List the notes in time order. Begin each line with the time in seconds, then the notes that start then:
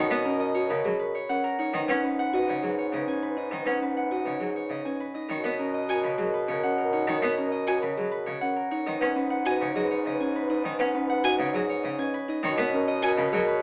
Already playing: B2 A#4 B4 C#5 F#5
0.04 A#4
0.10 B3 A#4 D#5
0.25 C#4 A#4
0.35 A#4
0.40 D#5
0.54 F#4 C#5
0.67 C#3 A#4 B4
0.85 F#3 G#4
0.97 A#4 B4
1.15 C#5
1.29 C#4 A#4 F#5
1.44 A#4
1.59 D#4 C#5
1.73 G#2 D#3 B4 D#5
1.88 C#4 B4 F#5
2.04 C#4 B4
2.19 F#5
2.33 F#4 B4 D#5
2.48 C#3 C#5
2.63 F#3 G#4
2.67 B4
2.78 C#5
2.92 C#3 D#5
2.98 B4
3.07 C#4 G#5
3.23 B4
3.30 B4
3.37 D#4 D#5
3.51 D#3 D#5
3.61 B4
3.66 C#4 B4 F#5
3.82 C#4 B4
3.92 B4
3.97 F#5
4.11 F#4 D#5
4.22 C#3 B4
4.26 C#5
4.40 F#3 G#4
4.53 B4 C#5
4.70 C#3 D#5
4.83 C#4 B4 G#5
5.00 B4
5.14 D#4 D#5
5.29 B2 D#3 A#4 C#5
5.44 B3 A#4 D#5
5.59 C#4 A#4
5.74 D#5
5.89 F#4 A#4 C#5 G#5
6.03 C#3 B4
6.18 F#3 G#4
6.22 A#4
6.34 B4
6.48 C#3 C#5
6.53 A#4
6.63 C#4 F#5
6.78 A#4
6.84 A#4
6.93 D#4 C#5
7.07 D#3 C#5
7.16 A#4
7.22 B3 A#4 D#5
7.38 C#4 A#4
7.47 A#4
7.51 D#5
7.67 F#4 C#5 G#5
7.79 C#3 A#4 B4
7.97 F#3 G#4
8.09 A#4 B4
8.26 C#3 C#5
8.40 C#4 A#4 F#5
8.56 A#4
8.71 D#4 C#5
8.86 G#2 D#3 B4 D#5
9.01 C#4 B4 F#5
9.16 C#4 B4
9.30 F#5
9.46 F#4 B4 D#5 G#5
9.61 C#3 C#5
9.76 F#3 G#4 D#5
9.80 B4
9.91 C#5
10.05 C#3 D#5
10.11 B4
10.20 C#4 G#5
10.36 B4
10.42 B4
10.50 D#4 D#5
10.64 D#3 D#5
10.73 B4
10.79 C#4 B4 F#5
10.95 C#4 B4
11.05 B4
11.09 F#5
11.24 F#4 D#5 G#5
11.36 C#3 B4 C#5
11.54 F#3 G#4 D#5
11.66 B4 C#5
11.84 C#3 D#5
11.97 C#4 B4 G#5
12.14 B4
12.28 D#4 D#5
12.43 B2 D#3 A#4 C#5
12.57 B3 A#4 D#5
12.73 C#4 A#4
12.88 D#5
13.03 F#4 A#4 C#5 G#5
13.17 C#3 B4
13.32 F#3 G#4 A#4 C#5
13.48 B4